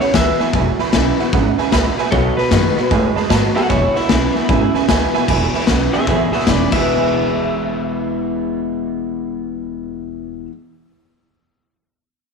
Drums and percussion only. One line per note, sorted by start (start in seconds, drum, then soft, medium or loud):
0.00 snare soft
0.14 kick medium
0.14 snare loud
0.14 hi-hat pedal medium
0.39 snare soft
0.53 kick loud
0.53 snare soft
0.79 snare soft
0.93 kick medium
0.93 snare loud
0.93 hi-hat pedal medium
1.19 snare soft
1.33 kick loud
1.33 snare soft
1.58 snare soft
1.72 kick loud
1.72 snare loud
1.72 hi-hat pedal medium
1.98 snare soft
2.12 kick loud
2.12 snare soft
2.38 snare soft
2.51 kick medium
2.51 snare loud
2.51 hi-hat pedal medium
2.77 snare soft
2.91 kick loud
2.91 snare soft
3.16 snare soft
3.30 kick medium
3.30 snare loud
3.30 hi-hat pedal medium
3.56 snare soft
3.70 kick loud
3.70 snare soft
3.95 snare soft
4.09 kick medium
4.09 snare loud
4.09 hi-hat pedal medium
4.35 snare soft
4.49 kick loud
4.49 snare soft
4.74 snare soft
4.88 kick medium
4.88 snare loud
4.88 hi-hat pedal loud
5.14 snare soft
5.28 kick loud
5.28 snare soft
5.28 crash loud
5.54 snare soft
5.61 snare soft
5.67 kick medium
5.67 snare loud
5.67 hi-hat pedal medium
5.92 snare soft
6.07 kick loud
6.07 snare soft
6.32 snare soft
6.40 snare soft
6.47 kick loud
6.47 snare loud
6.47 hi-hat pedal medium
6.72 kick loud
6.72 crash medium